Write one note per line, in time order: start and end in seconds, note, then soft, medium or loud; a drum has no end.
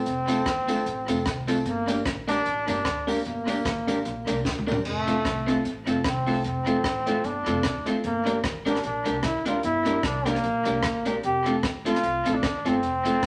0.00 1.45 C4 loud
0.06 0.46 F1 medium
0.06 closed hi-hat medium
0.28 0.39 A3 medium
0.28 0.37 C4 medium
0.28 0.39 C4 medium
0.28 0.37 F4 medium
0.28 0.39 F4 medium
0.28 0.39 A4 medium
0.28 0.38 A4 loud
0.28 closed hi-hat medium
0.28 tambourine medium
0.45 0.80 G1 medium
0.45 muted clean electric guitar stroke soft
0.45 kick loud
0.45 cross-stick loud
0.45 closed hi-hat medium
0.68 0.79 A3 medium
0.68 0.77 C4 medium
0.68 0.79 C4 medium
0.68 0.77 F4 medium
0.68 0.79 F4 medium
0.68 0.78 A4 loud
0.68 0.79 A4 loud
0.68 closed hi-hat medium
0.68 tambourine medium
0.85 1.05 A1 loud
0.85 muted clean electric guitar stroke soft
0.85 closed hi-hat medium
1.08 1.23 F1 medium
1.08 1.19 A3 medium
1.08 1.17 C4 medium
1.08 1.19 C4 medium
1.08 1.19 F4 medium
1.08 1.18 F4 medium
1.08 1.19 A4 loud
1.08 1.18 A4 medium
1.08 closed hi-hat medium
1.08 tambourine medium
1.26 1.60 C2 medium
1.26 kick loud
1.26 cross-stick loud
1.26 closed hi-hat medium
1.47 1.58 A3 medium
1.47 1.58 C4 medium
1.47 1.57 C4 medium
1.47 1.59 F4 medium
1.47 1.57 F4 medium
1.47 1.59 A4 loud
1.47 1.58 A4 loud
1.47 closed hi-hat medium
1.47 tambourine medium
1.65 1.99 G1 loud
1.65 2.04 A#3 medium
1.65 closed hi-hat medium
1.87 1.98 A#3 medium
1.87 1.97 D4 medium
1.87 1.98 D4 medium
1.87 1.99 G4 medium
1.87 1.97 G4 loud
1.87 1.99 A#4 medium
1.87 1.98 A#4 loud
1.87 closed hi-hat medium
1.87 tambourine medium
2.05 2.40 A#1 medium
2.05 muted clean electric guitar stroke soft
2.05 kick loud
2.05 cross-stick loud
2.05 closed hi-hat medium
2.27 2.38 A#3 loud
2.27 2.38 D4 medium
2.27 2.37 D4 medium
2.27 2.66 D4 loud
2.27 2.39 G4 medium
2.27 2.37 G4 medium
2.27 2.39 A#4 loud
2.27 2.38 A#4 medium
2.27 closed hi-hat medium
2.27 tambourine medium
2.45 2.65 A1 medium
2.45 muted clean electric guitar stroke soft
2.45 closed hi-hat medium
2.67 2.83 G1 loud
2.67 2.78 A#3 medium
2.67 2.78 D4 medium
2.67 2.77 D4 medium
2.67 3.10 D4 loud
2.67 2.78 G4 medium
2.67 2.77 G4 medium
2.67 2.79 A#4 medium
2.67 2.78 A#4 loud
2.67 closed hi-hat medium
2.67 tambourine medium
2.85 3.19 D2 medium
2.85 kick loud
2.85 cross-stick loud
2.85 closed hi-hat medium
3.07 3.18 A#3 medium
3.07 3.26 A#3 medium
3.07 3.18 D4 medium
3.07 3.17 D4 medium
3.07 3.18 G4 medium
3.07 3.17 G4 medium
3.07 3.18 A#4 loud
3.07 open hi-hat medium
3.07 tambourine medium
3.25 3.60 G1 medium
3.25 4.41 A#3 medium
3.25 closed hi-hat medium
3.47 3.58 A#3 medium
3.47 3.58 D4 medium
3.47 3.57 D4 medium
3.47 3.58 G4 medium
3.47 3.57 G4 medium
3.47 3.58 A#4 loud
3.47 3.57 A#4 loud
3.47 closed hi-hat medium
3.47 tambourine medium
3.65 3.99 A1 medium
3.65 kick loud
3.65 cross-stick loud
3.65 closed hi-hat medium
3.87 3.98 A#3 loud
3.87 3.98 D4 medium
3.87 3.97 D4 medium
3.87 3.98 G4 medium
3.87 3.97 G4 medium
3.87 3.98 A#4 loud
3.87 3.97 A#4 medium
3.87 closed hi-hat medium
3.87 tambourine medium
4.05 4.25 A#1 loud
4.05 muted clean electric guitar stroke soft
4.05 closed hi-hat medium
4.27 4.45 C2 medium
4.27 4.38 A#3 medium
4.27 4.38 D4 medium
4.27 4.37 D4 medium
4.27 4.38 G4 medium
4.27 4.37 G4 medium
4.27 4.38 A#4 medium
4.27 4.37 A#4 medium
4.27 closed hi-hat medium
4.27 tambourine medium
4.45 4.79 D2 loud
4.45 kick loud
4.45 snare medium
4.59 mid tom medium
4.67 4.78 A#3 loud
4.67 4.76 D4 medium
4.67 4.78 D4 medium
4.67 4.77 G4 medium
4.67 4.78 G4 medium
4.67 4.77 A#4 medium
4.67 4.78 A#4 loud
4.67 tambourine medium
4.72 floor tom loud
4.85 5.19 F1 loud
4.85 5.61 A3 loud
4.85 crash medium
5.07 5.18 A3 medium
5.07 5.16 C4 medium
5.07 5.18 C4 medium
5.07 5.16 F4 medium
5.07 5.18 F4 medium
5.07 5.18 A4 medium
5.07 5.17 A4 medium
5.07 closed hi-hat medium
5.25 5.59 C2 medium
5.25 muted clean electric guitar stroke soft
5.25 kick loud
5.25 cross-stick loud
5.25 closed hi-hat medium
5.47 5.57 A3 loud
5.47 5.56 C4 medium
5.47 5.57 C4 medium
5.47 5.56 F4 medium
5.47 5.58 F4 medium
5.47 5.58 A4 loud
5.47 5.57 A4 loud
5.47 closed hi-hat medium
5.65 5.84 A1 medium
5.65 muted clean electric guitar stroke soft
5.65 closed hi-hat medium
5.86 6.02 F1 medium
5.86 5.97 A3 medium
5.86 5.97 C4 medium
5.86 5.96 C4 medium
5.86 5.97 F4 medium
5.86 5.96 F4 medium
5.86 5.98 A4 loud
5.86 5.96 A4 medium
5.86 closed hi-hat medium
6.04 6.46 C2 medium
6.04 6.43 C4 medium
6.04 kick loud
6.04 cross-stick loud
6.04 closed hi-hat medium
6.26 6.37 A3 medium
6.26 6.36 C4 medium
6.26 6.37 C4 medium
6.26 6.37 F4 medium
6.26 6.36 F4 medium
6.26 6.38 A4 loud
6.26 6.36 A4 medium
6.26 open hi-hat soft
6.44 6.84 F1 loud
6.44 7.27 C4 medium
6.44 closed hi-hat medium
6.66 6.77 A3 medium
6.66 6.75 C4 loud
6.66 6.77 C4 medium
6.66 6.77 F4 medium
6.66 6.76 F4 loud
6.66 6.76 A4 loud
6.66 6.78 A4 loud
6.66 closed hi-hat medium
6.84 7.18 A1 medium
6.84 muted clean electric guitar stroke soft
6.84 kick loud
6.84 cross-stick loud
6.84 closed hi-hat medium
7.06 7.17 A3 loud
7.06 7.16 C4 medium
7.06 7.17 C4 medium
7.06 7.17 F4 medium
7.06 7.16 F4 medium
7.06 7.18 A4 loud
7.06 7.16 A4 medium
7.06 closed hi-hat medium
7.24 7.43 G1 medium
7.24 7.87 D4 loud
7.24 muted clean electric guitar stroke soft
7.24 closed hi-hat medium
7.46 7.61 F1 loud
7.46 7.57 A3 medium
7.46 7.56 C4 medium
7.46 7.57 C4 medium
7.46 7.57 F4 medium
7.46 7.56 F4 medium
7.46 7.57 A4 medium
7.46 7.56 A4 medium
7.46 closed hi-hat medium
7.63 7.98 D2 medium
7.63 kick loud
7.63 cross-stick loud
7.63 closed hi-hat medium
7.86 7.96 A3 loud
7.86 7.97 C4 medium
7.86 7.95 C4 medium
7.86 7.97 F4 medium
7.86 7.96 F4 medium
7.86 7.97 A4 loud
7.86 7.96 A4 medium
7.86 closed hi-hat medium
8.04 8.38 G1 loud
8.04 8.42 A#3 medium
8.04 closed hi-hat medium
8.26 8.36 A#3 medium
8.26 8.37 D4 medium
8.26 8.35 D4 medium
8.26 8.37 G4 medium
8.26 8.36 G4 medium
8.26 8.37 A#4 medium
8.26 8.36 A#4 medium
8.26 closed hi-hat medium
8.44 8.78 A1 medium
8.44 muted clean electric guitar stroke soft
8.44 kick loud
8.44 cross-stick loud
8.44 closed hi-hat medium
8.65 8.76 A#3 loud
8.65 8.75 D4 medium
8.65 8.77 D4 medium
8.65 8.83 D4 medium
8.65 8.75 G4 medium
8.65 8.77 G4 medium
8.65 8.77 A#4 loud
8.65 8.76 A#4 loud
8.65 closed hi-hat medium
8.75 cross-stick medium
8.83 9.03 A#1 medium
8.83 9.22 D4 loud
8.83 muted clean electric guitar stroke soft
8.83 closed hi-hat medium
9.05 9.21 C2 medium
9.05 9.16 A#3 medium
9.05 9.15 D4 medium
9.05 9.16 D4 medium
9.05 9.15 G4 medium
9.05 9.17 G4 medium
9.05 9.15 A#4 medium
9.05 9.17 A#4 loud
9.05 closed hi-hat medium
9.23 9.57 D2 medium
9.23 9.45 E4 medium
9.23 kick loud
9.23 cross-stick loud
9.23 closed hi-hat medium
9.46 9.56 A#3 medium
9.46 9.55 D4 medium
9.46 9.56 D4 medium
9.46 9.63 F4 medium
9.46 9.55 G4 medium
9.46 9.57 G4 medium
9.46 9.57 A#4 loud
9.46 9.56 A#4 medium
9.46 closed hi-hat medium
9.63 9.98 G1 loud
9.63 10.06 E4 medium
9.63 closed hi-hat medium
9.85 9.96 A#3 medium
9.85 9.95 D4 medium
9.85 9.97 D4 medium
9.85 9.95 G4 medium
9.85 9.97 G4 medium
9.85 9.95 A#4 medium
9.85 9.97 A#4 loud
9.85 closed hi-hat medium
10.03 10.37 C2 medium
10.03 10.29 D4 loud
10.03 muted clean electric guitar stroke soft
10.03 kick loud
10.03 cross-stick loud
10.03 closed hi-hat medium
10.25 10.36 A#3 medium
10.25 11.07 A#3 loud
10.25 10.35 D4 medium
10.25 10.36 D4 medium
10.25 10.36 G4 medium
10.25 10.35 G4 loud
10.25 10.37 A#4 loud
10.25 10.36 A#4 medium
10.25 cross-stick medium
10.25 closed hi-hat medium
10.35 cross-stick medium
10.43 10.63 A#1 medium
10.43 muted clean electric guitar stroke soft
10.43 closed hi-hat medium
10.65 10.84 C2 medium
10.65 10.76 A#3 medium
10.65 10.75 D4 medium
10.65 10.76 D4 medium
10.65 10.76 G4 medium
10.65 10.75 G4 medium
10.65 10.77 A#4 medium
10.65 10.75 A#4 loud
10.65 closed hi-hat medium
10.83 11.17 A#1 medium
10.83 kick loud
10.83 cross-stick loud
10.83 closed hi-hat medium
11.06 11.16 A#3 medium
11.06 11.15 D4 medium
11.06 11.16 D4 medium
11.06 11.15 G4 medium
11.06 11.17 G4 medium
11.06 11.15 A#4 medium
11.06 11.17 A#4 loud
11.06 closed hi-hat medium
11.23 11.58 F1 medium
11.23 11.56 G4 loud
11.23 closed hi-hat medium
11.46 11.56 A3 medium
11.46 11.55 C4 medium
11.46 11.56 C4 medium
11.46 11.55 F4 medium
11.46 11.57 F4 medium
11.46 11.57 A4 loud
11.46 11.55 A4 medium
11.46 closed hi-hat medium
11.63 11.97 A1 medium
11.63 muted clean electric guitar stroke soft
11.63 kick loud
11.63 cross-stick loud
11.63 closed hi-hat medium
11.85 11.96 A3 medium
11.85 11.95 C4 medium
11.85 11.96 C4 medium
11.85 11.96 F4 medium
11.85 11.95 F4 medium
11.85 12.37 F4 loud
11.85 11.97 A4 loud
11.85 11.95 A4 loud
11.85 closed hi-hat medium
11.95 cross-stick medium
12.03 12.23 C2 medium
12.03 muted clean electric guitar stroke soft
12.03 closed hi-hat medium
12.25 12.41 A#1 loud
12.25 12.36 A3 medium
12.25 12.35 C4 medium
12.25 12.36 C4 medium
12.25 12.35 F4 medium
12.25 12.36 F4 medium
12.25 12.37 A4 loud
12.25 12.35 A4 loud
12.25 closed hi-hat medium
12.36 12.69 D4 medium
12.43 12.63 A1 medium
12.43 kick loud
12.43 cross-stick loud
12.43 closed hi-hat medium
12.65 12.83 G1 medium
12.65 12.76 A3 medium
12.65 12.76 C4 medium
12.65 12.75 C4 medium
12.65 13.26 C4 loud
12.65 12.76 F4 medium
12.65 12.75 F4 medium
12.65 12.76 A4 loud
12.65 12.75 A4 medium
12.65 closed hi-hat medium
12.83 13.23 F1 medium
12.83 closed hi-hat medium
13.05 13.16 A3 medium
13.05 13.14 C4 medium
13.05 13.16 C4 medium
13.05 13.15 F4 loud
13.05 13.16 F4 medium
13.05 13.15 A4 medium
13.05 13.17 A4 loud
13.05 closed hi-hat medium
13.23 muted clean electric guitar stroke soft
13.23 kick loud
13.23 cross-stick loud
13.23 closed hi-hat medium